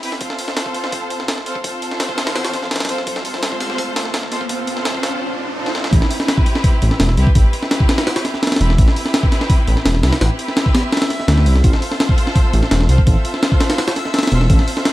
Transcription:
0.03 C4 E4 G4 B4, open hi-hat
0.12 snare
0.21 C4 F4 A4 C5, kick, open hi-hat, riser
0.30 snare
0.39 open hi-hat
0.48 snare
0.57 snare, open hi-hat
0.66 kick
0.74 open hi-hat
0.84 snare
0.92 kick, open hi-hat
1.10 open hi-hat
1.20 snare
1.28 snare, open hi-hat
1.38 snare
1.46 C4 F4 A4 C5, open hi-hat
1.55 kick
1.64 C4 F4 A4 C5, kick, open hi-hat
1.82 open hi-hat
1.91 snare
2.00 snare, open hi-hat
2.09 kick
2.18 snare, open hi-hat
2.27 snare, open hi-hat
2.36 snare, open hi-hat
2.45 snare, open hi-hat
2.54 snare, open hi-hat
2.62 snare
2.71 snare, open hi-hat
2.76 snare, open hi-hat
2.80 snare, open hi-hat
2.85 F4, snare, open hi-hat
2.89 C4 A4 C5, snare, open hi-hat
2.98 snare
3.07 C4 F4 A4 C5, kick, open hi-hat
3.16 snare
3.25 open hi-hat
3.34 snare
3.43 snare, open hi-hat
3.52 kick
3.60 snare, open hi-hat
3.70 snare
3.78 kick, open hi-hat
3.96 snare, open hi-hat
4.05 snare
4.14 snare, open hi-hat
4.23 snare
4.31 C4 F4 A4 C5, snare, open hi-hat
4.41 kick
4.49 C4 F4 A4 C5, kick, open hi-hat
4.67 open hi-hat
4.77 snare
4.85 snare, open hi-hat
4.95 kick
5.03 snare, open hi-hat
5.57 C4 F4 A4 C5
5.66 snare
5.75 snare
5.84 snare
5.92 A1 C4 E4 G4 B4 E5 E6, kick, open hi-hat
6.02 snare
6.11 open hi-hat
6.20 snare
6.28 snare, open hi-hat
6.38 kick
6.46 open hi-hat
6.55 snare
6.64 kick, open hi-hat
6.82 A1, open hi-hat
6.91 snare
6.99 E1, snare, open hi-hat
7.09 snare
7.17 C2 C4 E4 G4 B4, open hi-hat
7.27 kick
7.35 A1 C4 E4 G4 B4, kick, open hi-hat
7.53 open hi-hat
7.63 snare
7.71 snare, open hi-hat
7.80 kick
7.89 snare, open hi-hat
7.98 snare, open hi-hat
8.07 snare, open hi-hat
8.16 snare, open hi-hat
8.25 snare, open hi-hat
8.34 snare
8.43 snare, open hi-hat
8.47 snare, open hi-hat
8.52 snare, open hi-hat
8.56 E1, snare, open hi-hat
8.61 C4 E4 G4 B4, snare, open hi-hat
8.70 snare
8.78 A1 C4 E4 G4 B4, kick, open hi-hat
8.88 snare
8.96 open hi-hat
9.06 snare
9.14 snare, open hi-hat
9.23 kick
9.32 snare, open hi-hat
9.41 snare
9.50 kick, open hi-hat
9.68 A1, open hi-hat
9.77 snare
9.85 E1, snare, open hi-hat
9.95 snare
10.03 C2 C4 E4 G4 B4, snare, open hi-hat
10.13 snare, open hi-hat
10.21 A1 C4 E4 G4 B4, snare, open hi-hat
10.39 open hi-hat
10.48 snare
10.57 snare, open hi-hat
10.66 kick
10.75 snare, open hi-hat
10.92 snare, open hi-hat
10.97 snare, open hi-hat
11.02 snare, open hi-hat
11.10 snare, open hi-hat
11.20 snare
11.28 D2 C4 E4 G4 B4, snare, open hi-hat
11.37 snare
11.46 C2, open hi-hat
11.55 snare
11.64 A1 C4 F4 A4 C5, kick, open hi-hat
11.73 snare
11.82 open hi-hat
11.91 snare
12.00 snare, open hi-hat
12.09 kick
12.18 open hi-hat
12.27 snare
12.36 kick, open hi-hat
12.53 A1, open hi-hat
12.63 snare
12.71 E1, snare, open hi-hat
12.81 snare
12.89 C2 C4 F4 A4 C5, open hi-hat
12.98 kick
13.07 A1 C4 F4 A4 C5, kick, open hi-hat
13.25 open hi-hat
13.34 snare
13.43 snare, open hi-hat
13.52 kick
13.60 snare, open hi-hat
13.70 snare, open hi-hat
13.78 snare, open hi-hat
13.88 snare, open hi-hat
13.96 snare, open hi-hat
14.05 snare
14.14 snare, open hi-hat
14.19 snare, open hi-hat
14.23 snare, open hi-hat
14.27 snare, open hi-hat
14.32 E1 C4 F4 A4 C5, snare, open hi-hat
14.41 snare
14.50 A1 C4 F4 A4 C5, kick, open hi-hat
14.59 snare
14.68 open hi-hat
14.77 snare
14.85 snare, open hi-hat

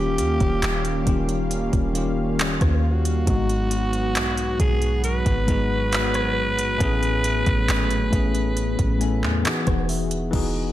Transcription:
Already playing: D#1 D#3 G3 A#3 C#4 F4 G4 F5
0.18 D#2, closed hi-hat
0.40 D#1, kick, closed hi-hat
0.63 D#1, clap, closed hi-hat
0.85 closed hi-hat
1.05 D#1 D#3 A#3 C#4 F4, kick, closed hi-hat
1.09 G4
1.29 closed hi-hat
1.51 closed hi-hat
1.73 D#1, kick, closed hi-hat
1.93 D#3 A#3 C#4 F4, closed hi-hat
1.98 G4
2.39 clap, closed hi-hat
2.61 D#2, kick, cross-stick, closed hi-hat
2.84 F#4
3.05 closed hi-hat
3.25 G#1 G#2 F#3 G#3 B3 D#4 F#4, kick, closed hi-hat
3.30 F#4
3.49 closed hi-hat
3.71 closed hi-hat
3.93 closed hi-hat
4.16 B1, clap, closed hi-hat
4.38 closed hi-hat
4.60 B1 G#4, kick, closed hi-hat
4.82 closed hi-hat
5.04 B4, closed hi-hat
5.26 G#1, kick, closed hi-hat
5.46 G#2 G#3 B3 D#4, kick, closed hi-hat
5.51 G#4
5.92 clap, closed hi-hat
6.14 cross-stick, closed hi-hat
6.36 A1
6.59 closed hi-hat
6.78 A1 A2 A3 B3 C#4, kick, closed hi-hat
6.83 G#4
7.03 closed hi-hat
7.24 closed hi-hat
7.46 A1, kick, closed hi-hat
7.69 G#1, clap, closed hi-hat
7.91 closed hi-hat
8.10 A1 A2 A3 B3 C#4, kick, closed hi-hat
8.15 G#4
8.35 closed hi-hat
8.57 closed hi-hat
8.79 A1, kick, closed hi-hat
8.99 A2 A3 B3 C#4 G#5, closed hi-hat
9.03 A4
9.23 E2, clap
9.43 E3 B3 D#4 F#4 G#4 F#5, clap, closed hi-hat
9.47 G#4
9.67 E1, kick, cross-stick, closed hi-hat
9.89 E5, open hi-hat
10.11 closed hi-hat
10.31 E1 E3 B3 D#4 F#4 G#4, kick, crash
10.36 G#4

